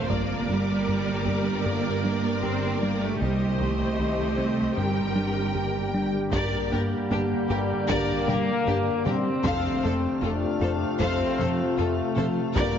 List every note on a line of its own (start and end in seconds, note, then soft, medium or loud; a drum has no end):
0.08 3.21 G1 medium
0.08 0.33 G2 medium
0.08 3.21 D3 medium
0.08 0.33 G3 medium
0.08 0.47 A#3 medium
0.08 3.21 A#3 medium
0.08 6.32 G4 medium
0.08 3.17 A#4 medium
0.08 3.17 D5 medium
0.08 taiko medium
0.48 0.72 G2 medium
0.48 1.65 G3 medium
0.48 0.72 A#3 medium
0.87 1.11 G2 medium
0.87 1.10 A#3 medium
1.26 1.50 G2 medium
1.26 1.50 G4 medium
1.26 taiko soft
1.65 1.89 G2 medium
1.65 1.89 G3 medium
1.65 2.43 A#3 medium
2.04 2.28 G3 medium
2.04 2.27 D4 medium
2.43 2.66 G2 soft
2.43 2.81 C4 medium
2.43 2.66 G4 medium
2.82 3.05 G3 soft
2.82 3.01 A#3 medium
2.82 3.05 D4 medium
3.02 3.21 A3 medium
3.21 4.74 C2 soft
3.21 3.44 C2 medium
3.21 3.44 C3 medium
3.21 4.77 D#3 medium
3.21 3.60 G3 medium
3.21 4.77 C4 medium
3.21 6.09 G4 medium
3.21 4.74 C5 soft
3.21 4.74 D#5 soft
3.60 3.83 C2 soft
3.60 3.83 D#3 soft
3.60 4.74 A3 medium
3.99 4.22 C2 medium
3.99 4.22 D#3 medium
4.37 4.61 C2 soft
4.37 4.61 C4 medium
4.76 6.10 G1 soft
4.76 5.00 G2 medium
4.76 6.32 D3 medium
4.76 5.54 G3 soft
4.76 5.00 G3 medium
4.76 6.32 A#3 medium
4.76 6.13 A#4 soft
4.76 6.10 G5 soft
5.16 5.39 G3 medium
5.16 5.39 D4 soft
5.55 5.78 G2 soft
5.55 6.29 G3 medium
5.55 5.78 G4 medium
5.94 6.17 G3 soft
5.94 6.17 D4 soft
6.33 6.41 G1 medium
6.33 6.41 G2 medium
6.33 6.56 G2 loud
6.33 9.40 D3 medium
6.33 9.41 D3 medium
6.33 6.57 G3 medium
6.33 9.40 A#3 medium
6.33 9.41 A#3 medium
6.33 6.72 A#3 medium
6.33 9.40 G4 medium
6.33 6.69 G4 medium
6.33 6.69 A#4 medium
6.33 9.40 D5 medium
6.33 6.69 D5 medium
6.33 taiko loud
6.72 6.80 G1 medium
6.72 6.95 G2 medium
6.72 6.80 G2 medium
6.72 7.87 G3 medium
6.72 6.96 A#3 medium
6.72 6.80 G4 soft
6.72 6.81 G4 medium
6.72 6.80 A#4 soft
7.11 7.20 G1 medium
7.11 7.19 G2 medium
7.11 7.34 G2 medium
7.11 7.34 A#3 medium
7.11 7.19 D4 medium
7.11 7.19 G4 soft
7.11 7.20 G4 medium
7.50 7.58 G1 medium
7.50 7.73 G2 medium
7.50 7.58 G2 medium
7.50 7.58 G4 soft
7.50 7.73 G4 medium
7.50 7.59 G4 medium
7.50 7.59 A#4 soft
7.88 7.97 G1 medium
7.88 7.97 G2 medium
7.88 8.12 G2 loud
7.88 8.12 G3 medium
7.88 9.06 A#3 loud
7.88 8.25 G4 medium
7.88 8.25 A#4 medium
7.88 8.25 D5 medium
7.88 taiko medium
8.27 8.36 G1 medium
8.27 8.35 G2 soft
8.27 8.51 G3 medium
8.27 8.51 D4 medium
8.27 8.36 G4 medium
8.27 8.37 G4 medium
8.27 8.37 A#4 medium
8.27 taiko mid soft
8.66 8.75 G1 medium
8.66 8.75 G2 medium
8.66 8.90 G2 medium
8.66 8.74 D4 medium
8.66 8.76 G4 medium
8.66 8.91 G4 medium
8.66 8.76 G4 medium
9.05 9.13 G1 medium
9.05 9.14 G2 medium
9.05 9.29 G3 medium
9.05 10.22 C4 loud
9.05 9.29 D4 medium
9.05 9.13 G4 medium
9.05 9.14 G4 medium
9.05 9.16 A#4 soft
9.05 taiko mid medium
9.43 9.52 F1 medium
9.43 9.52 F2 medium
9.43 9.68 F2 medium
9.43 12.56 C3 medium
9.43 12.52 C3 medium
9.43 9.68 F3 medium
9.43 12.56 A3 medium
9.43 12.52 A3 medium
9.43 12.56 F4 medium
9.43 9.81 A4 medium
9.43 9.80 C5 medium
9.43 12.56 F5 medium
9.43 9.81 F5 medium
9.43 taiko loud
9.83 9.91 F1 medium
9.83 10.07 F2 medium
9.83 9.92 F2 medium
9.83 10.07 A3 medium
9.83 9.91 A4 medium
9.83 9.92 A4 medium
9.83 9.93 C5 soft
10.22 10.30 F1 medium
10.22 10.46 F2 medium
10.22 10.31 F2 medium
10.22 10.46 A3 medium
10.22 11.00 D4 medium
10.22 10.30 F4 medium
10.22 10.31 A4 medium
10.22 10.32 A4 medium
10.61 10.69 F1 medium
10.61 10.84 F2 medium
10.61 10.70 F2 soft
10.61 10.85 F4 medium
10.61 10.69 A4 soft
10.61 10.69 A4 medium
10.61 10.70 C5 medium
11.00 11.08 F1 medium
11.00 11.23 F2 medium
11.00 11.09 F2 medium
11.00 11.24 F3 medium
11.00 11.77 C4 loud
11.00 11.37 A4 medium
11.00 11.36 C5 medium
11.00 11.37 F5 medium
11.00 taiko medium
11.39 11.48 F1 medium
11.39 11.47 F2 soft
11.39 11.62 F3 medium
11.39 11.63 C4 medium
11.39 11.47 A4 medium
11.39 11.48 C5 medium
11.39 taiko mid soft
11.77 11.87 F1 medium
11.77 12.01 F2 medium
11.77 11.86 F2 medium
11.77 12.57 A3 medium
11.77 11.85 F4 medium
11.77 12.02 F4 medium
11.77 11.86 A4 medium
12.16 12.25 F1 medium
12.16 12.25 F2 medium
12.16 12.40 F3 medium
12.16 12.41 C4 medium
12.16 12.24 A4 medium
12.16 12.26 A4 medium
12.16 12.25 C5 medium
12.16 taiko mid soft
12.55 12.64 G1 medium
12.55 12.79 G2 medium
12.55 12.64 G2 medium
12.55 12.79 D3 medium
12.55 12.79 G3 medium
12.55 12.79 A#3 medium
12.55 12.79 G4 medium
12.55 12.79 A#4 medium
12.55 12.79 D5 medium
12.55 taiko medium